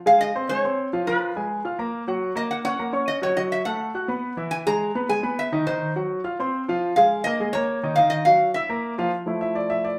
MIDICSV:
0, 0, Header, 1, 3, 480
1, 0, Start_track
1, 0, Tempo, 288046
1, 1770, Time_signature, 4, 2, 24, 8
1, 16646, End_track
2, 0, Start_track
2, 0, Title_t, "Resonator guitar played with a steel bar"
2, 0, Program_c, 0, 25
2, 113, Note_on_c, 0, 77, 97
2, 343, Note_on_c, 0, 75, 97
2, 349, Note_off_c, 0, 77, 0
2, 816, Note_off_c, 0, 75, 0
2, 822, Note_on_c, 0, 73, 95
2, 1709, Note_off_c, 0, 73, 0
2, 1786, Note_on_c, 0, 71, 80
2, 3390, Note_off_c, 0, 71, 0
2, 3943, Note_on_c, 0, 75, 78
2, 4026, Note_off_c, 0, 75, 0
2, 4178, Note_on_c, 0, 78, 86
2, 4261, Note_off_c, 0, 78, 0
2, 4412, Note_on_c, 0, 78, 90
2, 5079, Note_off_c, 0, 78, 0
2, 5128, Note_on_c, 0, 75, 83
2, 5374, Note_off_c, 0, 75, 0
2, 5384, Note_on_c, 0, 73, 80
2, 5610, Note_on_c, 0, 75, 91
2, 5622, Note_off_c, 0, 73, 0
2, 5693, Note_off_c, 0, 75, 0
2, 5864, Note_on_c, 0, 76, 82
2, 6078, Note_off_c, 0, 76, 0
2, 6085, Note_on_c, 0, 78, 88
2, 7284, Note_off_c, 0, 78, 0
2, 7514, Note_on_c, 0, 80, 102
2, 7597, Note_off_c, 0, 80, 0
2, 7776, Note_on_c, 0, 82, 102
2, 8482, Note_off_c, 0, 82, 0
2, 8488, Note_on_c, 0, 80, 94
2, 8980, Note_off_c, 0, 80, 0
2, 8980, Note_on_c, 0, 76, 91
2, 9444, Note_on_c, 0, 72, 81
2, 9465, Note_off_c, 0, 76, 0
2, 9889, Note_off_c, 0, 72, 0
2, 11599, Note_on_c, 0, 77, 102
2, 12057, Note_off_c, 0, 77, 0
2, 12064, Note_on_c, 0, 75, 101
2, 12545, Note_on_c, 0, 73, 89
2, 12567, Note_off_c, 0, 75, 0
2, 13257, Note_on_c, 0, 77, 98
2, 13295, Note_off_c, 0, 73, 0
2, 13495, Note_on_c, 0, 75, 85
2, 13517, Note_off_c, 0, 77, 0
2, 13747, Note_on_c, 0, 77, 91
2, 13756, Note_off_c, 0, 75, 0
2, 14201, Note_off_c, 0, 77, 0
2, 14236, Note_on_c, 0, 76, 80
2, 14685, Note_off_c, 0, 76, 0
2, 16646, End_track
3, 0, Start_track
3, 0, Title_t, "Grand piano"
3, 0, Program_c, 1, 0
3, 98, Note_on_c, 1, 56, 72
3, 101, Note_on_c, 1, 68, 74
3, 104, Note_on_c, 1, 80, 78
3, 489, Note_off_c, 1, 56, 0
3, 490, Note_off_c, 1, 68, 0
3, 492, Note_off_c, 1, 80, 0
3, 586, Note_on_c, 1, 60, 70
3, 589, Note_on_c, 1, 72, 76
3, 598, Note_on_c, 1, 84, 76
3, 777, Note_off_c, 1, 60, 0
3, 778, Note_off_c, 1, 72, 0
3, 784, Note_off_c, 1, 84, 0
3, 833, Note_on_c, 1, 56, 62
3, 838, Note_on_c, 1, 68, 66
3, 844, Note_on_c, 1, 80, 67
3, 1021, Note_off_c, 1, 56, 0
3, 1024, Note_off_c, 1, 68, 0
3, 1027, Note_off_c, 1, 80, 0
3, 1071, Note_on_c, 1, 60, 71
3, 1074, Note_on_c, 1, 72, 72
3, 1082, Note_on_c, 1, 84, 75
3, 1456, Note_off_c, 1, 60, 0
3, 1458, Note_off_c, 1, 72, 0
3, 1463, Note_off_c, 1, 84, 0
3, 1550, Note_on_c, 1, 53, 78
3, 1553, Note_on_c, 1, 65, 76
3, 1554, Note_on_c, 1, 77, 73
3, 1738, Note_off_c, 1, 53, 0
3, 1741, Note_off_c, 1, 65, 0
3, 1741, Note_off_c, 1, 77, 0
3, 1792, Note_on_c, 1, 53, 77
3, 1795, Note_on_c, 1, 65, 73
3, 1799, Note_on_c, 1, 77, 70
3, 2177, Note_off_c, 1, 53, 0
3, 2178, Note_off_c, 1, 65, 0
3, 2180, Note_off_c, 1, 77, 0
3, 2270, Note_on_c, 1, 56, 69
3, 2275, Note_on_c, 1, 68, 65
3, 2279, Note_on_c, 1, 80, 68
3, 2655, Note_off_c, 1, 56, 0
3, 2658, Note_off_c, 1, 68, 0
3, 2660, Note_off_c, 1, 80, 0
3, 2743, Note_on_c, 1, 65, 67
3, 2754, Note_on_c, 1, 77, 67
3, 2755, Note_on_c, 1, 89, 65
3, 2934, Note_off_c, 1, 65, 0
3, 2941, Note_off_c, 1, 77, 0
3, 2941, Note_off_c, 1, 89, 0
3, 2979, Note_on_c, 1, 58, 72
3, 2980, Note_on_c, 1, 70, 74
3, 2987, Note_on_c, 1, 82, 77
3, 3368, Note_off_c, 1, 58, 0
3, 3369, Note_off_c, 1, 70, 0
3, 3373, Note_off_c, 1, 82, 0
3, 3457, Note_on_c, 1, 54, 80
3, 3461, Note_on_c, 1, 66, 77
3, 3470, Note_on_c, 1, 78, 76
3, 3847, Note_off_c, 1, 54, 0
3, 3850, Note_off_c, 1, 66, 0
3, 3854, Note_off_c, 1, 78, 0
3, 3924, Note_on_c, 1, 58, 78
3, 3930, Note_on_c, 1, 70, 77
3, 3933, Note_on_c, 1, 82, 75
3, 4319, Note_off_c, 1, 58, 0
3, 4323, Note_off_c, 1, 70, 0
3, 4324, Note_off_c, 1, 82, 0
3, 4406, Note_on_c, 1, 61, 70
3, 4414, Note_on_c, 1, 73, 77
3, 4417, Note_on_c, 1, 85, 74
3, 4603, Note_off_c, 1, 61, 0
3, 4608, Note_off_c, 1, 73, 0
3, 4610, Note_off_c, 1, 85, 0
3, 4653, Note_on_c, 1, 58, 65
3, 4654, Note_on_c, 1, 70, 71
3, 4659, Note_on_c, 1, 82, 65
3, 4847, Note_off_c, 1, 58, 0
3, 4848, Note_off_c, 1, 70, 0
3, 4851, Note_off_c, 1, 82, 0
3, 4876, Note_on_c, 1, 61, 73
3, 4879, Note_on_c, 1, 73, 71
3, 4888, Note_on_c, 1, 85, 71
3, 5274, Note_off_c, 1, 61, 0
3, 5276, Note_off_c, 1, 73, 0
3, 5281, Note_off_c, 1, 85, 0
3, 5360, Note_on_c, 1, 54, 74
3, 5371, Note_on_c, 1, 66, 79
3, 5376, Note_on_c, 1, 78, 79
3, 5560, Note_off_c, 1, 54, 0
3, 5566, Note_off_c, 1, 66, 0
3, 5569, Note_off_c, 1, 78, 0
3, 5604, Note_on_c, 1, 54, 77
3, 5613, Note_on_c, 1, 66, 71
3, 5616, Note_on_c, 1, 78, 73
3, 5998, Note_off_c, 1, 54, 0
3, 6004, Note_off_c, 1, 66, 0
3, 6006, Note_off_c, 1, 78, 0
3, 6090, Note_on_c, 1, 57, 69
3, 6098, Note_on_c, 1, 69, 69
3, 6098, Note_on_c, 1, 81, 69
3, 6482, Note_off_c, 1, 57, 0
3, 6486, Note_off_c, 1, 69, 0
3, 6486, Note_off_c, 1, 81, 0
3, 6574, Note_on_c, 1, 66, 64
3, 6579, Note_on_c, 1, 78, 67
3, 6584, Note_on_c, 1, 90, 64
3, 6767, Note_off_c, 1, 66, 0
3, 6770, Note_off_c, 1, 78, 0
3, 6773, Note_off_c, 1, 90, 0
3, 6802, Note_on_c, 1, 59, 75
3, 6806, Note_on_c, 1, 71, 72
3, 6813, Note_on_c, 1, 83, 71
3, 7197, Note_off_c, 1, 59, 0
3, 7199, Note_off_c, 1, 71, 0
3, 7203, Note_off_c, 1, 83, 0
3, 7281, Note_on_c, 1, 52, 76
3, 7286, Note_on_c, 1, 64, 77
3, 7292, Note_on_c, 1, 76, 76
3, 7676, Note_off_c, 1, 52, 0
3, 7679, Note_off_c, 1, 64, 0
3, 7682, Note_off_c, 1, 76, 0
3, 7773, Note_on_c, 1, 56, 77
3, 7779, Note_on_c, 1, 68, 75
3, 7782, Note_on_c, 1, 80, 74
3, 8163, Note_off_c, 1, 56, 0
3, 8166, Note_off_c, 1, 68, 0
3, 8168, Note_off_c, 1, 80, 0
3, 8251, Note_on_c, 1, 59, 74
3, 8255, Note_on_c, 1, 71, 75
3, 8259, Note_on_c, 1, 83, 72
3, 8444, Note_off_c, 1, 59, 0
3, 8447, Note_off_c, 1, 71, 0
3, 8450, Note_off_c, 1, 83, 0
3, 8483, Note_on_c, 1, 56, 68
3, 8489, Note_on_c, 1, 68, 64
3, 8493, Note_on_c, 1, 80, 66
3, 8680, Note_off_c, 1, 56, 0
3, 8684, Note_off_c, 1, 68, 0
3, 8686, Note_off_c, 1, 80, 0
3, 8715, Note_on_c, 1, 59, 70
3, 8719, Note_on_c, 1, 71, 72
3, 8724, Note_on_c, 1, 83, 72
3, 9112, Note_off_c, 1, 59, 0
3, 9114, Note_off_c, 1, 71, 0
3, 9117, Note_off_c, 1, 83, 0
3, 9202, Note_on_c, 1, 51, 80
3, 9210, Note_on_c, 1, 63, 78
3, 9211, Note_on_c, 1, 75, 83
3, 9399, Note_off_c, 1, 51, 0
3, 9404, Note_off_c, 1, 63, 0
3, 9404, Note_off_c, 1, 75, 0
3, 9445, Note_on_c, 1, 51, 76
3, 9449, Note_on_c, 1, 63, 75
3, 9451, Note_on_c, 1, 75, 75
3, 9837, Note_off_c, 1, 51, 0
3, 9840, Note_off_c, 1, 63, 0
3, 9841, Note_off_c, 1, 75, 0
3, 9929, Note_on_c, 1, 54, 65
3, 9929, Note_on_c, 1, 66, 69
3, 9940, Note_on_c, 1, 78, 67
3, 10320, Note_off_c, 1, 54, 0
3, 10320, Note_off_c, 1, 66, 0
3, 10326, Note_off_c, 1, 78, 0
3, 10401, Note_on_c, 1, 65, 71
3, 10405, Note_on_c, 1, 77, 70
3, 10409, Note_on_c, 1, 89, 70
3, 10598, Note_off_c, 1, 65, 0
3, 10601, Note_off_c, 1, 77, 0
3, 10603, Note_off_c, 1, 89, 0
3, 10654, Note_on_c, 1, 60, 76
3, 10663, Note_on_c, 1, 72, 69
3, 10670, Note_on_c, 1, 84, 78
3, 11042, Note_off_c, 1, 60, 0
3, 11048, Note_off_c, 1, 72, 0
3, 11052, Note_off_c, 1, 84, 0
3, 11138, Note_on_c, 1, 53, 85
3, 11148, Note_on_c, 1, 65, 80
3, 11152, Note_on_c, 1, 77, 84
3, 11525, Note_off_c, 1, 53, 0
3, 11530, Note_off_c, 1, 65, 0
3, 11533, Note_off_c, 1, 77, 0
3, 11619, Note_on_c, 1, 56, 75
3, 11621, Note_on_c, 1, 68, 81
3, 11627, Note_on_c, 1, 80, 76
3, 12005, Note_off_c, 1, 56, 0
3, 12006, Note_off_c, 1, 68, 0
3, 12010, Note_off_c, 1, 80, 0
3, 12099, Note_on_c, 1, 58, 77
3, 12104, Note_on_c, 1, 70, 77
3, 12110, Note_on_c, 1, 82, 76
3, 12289, Note_off_c, 1, 58, 0
3, 12292, Note_off_c, 1, 70, 0
3, 12295, Note_off_c, 1, 82, 0
3, 12330, Note_on_c, 1, 56, 66
3, 12338, Note_on_c, 1, 80, 65
3, 12340, Note_on_c, 1, 68, 70
3, 12523, Note_off_c, 1, 56, 0
3, 12528, Note_off_c, 1, 80, 0
3, 12529, Note_off_c, 1, 68, 0
3, 12571, Note_on_c, 1, 58, 75
3, 12575, Note_on_c, 1, 70, 73
3, 12581, Note_on_c, 1, 82, 72
3, 12960, Note_off_c, 1, 58, 0
3, 12963, Note_off_c, 1, 70, 0
3, 12967, Note_off_c, 1, 82, 0
3, 13052, Note_on_c, 1, 51, 81
3, 13058, Note_on_c, 1, 63, 78
3, 13064, Note_on_c, 1, 75, 75
3, 13244, Note_off_c, 1, 51, 0
3, 13248, Note_off_c, 1, 63, 0
3, 13251, Note_off_c, 1, 75, 0
3, 13293, Note_on_c, 1, 51, 77
3, 13298, Note_on_c, 1, 63, 73
3, 13303, Note_on_c, 1, 75, 81
3, 13682, Note_off_c, 1, 51, 0
3, 13685, Note_off_c, 1, 63, 0
3, 13688, Note_off_c, 1, 75, 0
3, 13766, Note_on_c, 1, 54, 68
3, 13770, Note_on_c, 1, 66, 65
3, 13775, Note_on_c, 1, 78, 68
3, 14158, Note_off_c, 1, 54, 0
3, 14161, Note_off_c, 1, 66, 0
3, 14163, Note_off_c, 1, 78, 0
3, 14256, Note_on_c, 1, 64, 64
3, 14260, Note_on_c, 1, 76, 67
3, 14262, Note_on_c, 1, 88, 67
3, 14447, Note_off_c, 1, 64, 0
3, 14450, Note_off_c, 1, 76, 0
3, 14451, Note_off_c, 1, 88, 0
3, 14485, Note_on_c, 1, 58, 73
3, 14490, Note_on_c, 1, 70, 74
3, 14497, Note_on_c, 1, 82, 72
3, 14878, Note_off_c, 1, 58, 0
3, 14881, Note_off_c, 1, 70, 0
3, 14885, Note_off_c, 1, 82, 0
3, 14967, Note_on_c, 1, 53, 84
3, 14973, Note_on_c, 1, 65, 80
3, 14979, Note_on_c, 1, 77, 80
3, 15162, Note_off_c, 1, 53, 0
3, 15166, Note_off_c, 1, 65, 0
3, 15169, Note_off_c, 1, 77, 0
3, 15430, Note_on_c, 1, 53, 54
3, 15440, Note_on_c, 1, 57, 49
3, 15450, Note_on_c, 1, 64, 60
3, 15681, Note_on_c, 1, 76, 68
3, 15916, Note_off_c, 1, 76, 0
3, 15920, Note_on_c, 1, 74, 75
3, 16156, Note_off_c, 1, 74, 0
3, 16161, Note_on_c, 1, 76, 82
3, 16396, Note_off_c, 1, 76, 0
3, 16406, Note_on_c, 1, 74, 71
3, 16646, Note_off_c, 1, 53, 0
3, 16646, Note_off_c, 1, 57, 0
3, 16646, Note_off_c, 1, 64, 0
3, 16646, Note_off_c, 1, 74, 0
3, 16646, End_track
0, 0, End_of_file